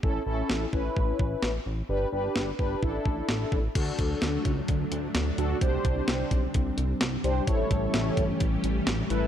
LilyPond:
<<
  \new Staff \with { instrumentName = "Analog polysynth" } { \time 4/4 \key d \major \tempo 4 = 129 <cis' e' a'>8 <cis' e' a'>4 <cis' e' b'>4. r4 | <d' g' b'>8 <d' g' b'>4 <d' g' b'>8 <d' e' a'>4. r8 | <d' fis' a'>4. r2 <d' fis' a'>8 | <d' g' c''>4. r2 <d' g' c''>8 |
<e' a' cis''>4. r2 <e' a' b'>8 | }
  \new Staff \with { instrumentName = "String machine" } { \time 4/4 \key d \major << { r1 | r1 | d'1~ | d'1 |
<e g'>1 | } \\ { r1 | r1 | <fis a>1 | <g c'>1 |
<a cis'>1 | } >> }
  \new Staff \with { instrumentName = "Analog synth bass" } { \clef bass \time 4/4 \key d \major a,,8 a,,8 a,,8 a,,8 a,,8 a,,8 a,,8 a,,8 | g,,8 g,,8 g,,8 g,,8 a,,8 a,,8 a,,8 a,,8 | d,8 d,8 d,8 cis,8 d,8 d,8 d,8 d,8 | c,8 c,8 c,8 b,,8 c,8 c,8 c,8 c,8 |
a,,8 a,,8 a,,8 g,,8 a,,8 a,,8 a,,8 a,,8 | }
  \new DrumStaff \with { instrumentName = "Drums" } \drummode { \time 4/4 bd4 sn8 bd8 bd8 bd8 sn4 | r4 sn8 bd8 bd8 bd8 sn8 bd8 | <cymc hh bd>8 <hh bd>8 <hh sn>8 <hh bd>8 <hh bd>8 hh8 <hh sn>8 hh8 | <hh bd>8 <hh bd>8 <hh sn>8 <hh bd>8 <hh bd>8 hh8 <hh sn>8 hh8 |
<hh bd>8 <hh bd>8 <hh sn>8 <hh bd>8 <hh bd>8 hh8 <hh sn>8 hh8 | }
>>